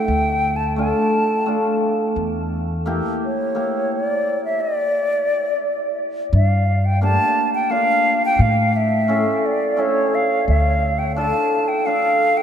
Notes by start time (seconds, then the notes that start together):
Already playing: G5
0.08 D2
0.56 A5
0.76 A3 D4 F4 A5
1.46 A3 D4 F4
2.16 E2
2.86 A#3 E4 G4
3.25 C#5
3.55 A#3 E4 G4
3.93 D5
4.45 E5
4.61 D5
6.33 G2 F5
6.85 G5
7.01 A#3 D4 G4 A5
7.55 G5
7.70 A#3 D4 F4 F5
8.25 G5
8.39 A2 F5
8.76 E5
9.08 C#4 E4 A4
9.46 D5
9.77 C#4 E4 A4 C#5
10.15 F5
10.48 D2 F5
10.99 G5
11.16 D4 F4 A4 A5
11.68 G5
11.86 D4 F4 A4 F5
12.37 G5